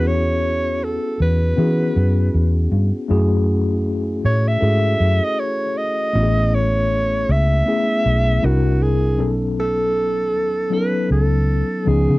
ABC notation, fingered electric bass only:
X:1
M:4/4
L:1/16
Q:"Swing 16ths" 1/4=79
K:Bmix
V:1 name="Fingered electric bass" clef=bass
E,,6 E,,2 E,2 F,,2 E,,2 =G,, z | F,,6 A,,2 G,,2 F,, z4 z | A,,,6 C,,2 z2 B,,,2 =C,,4 | B,,,6 D,,2 z2 C,,3 z C,, C, |]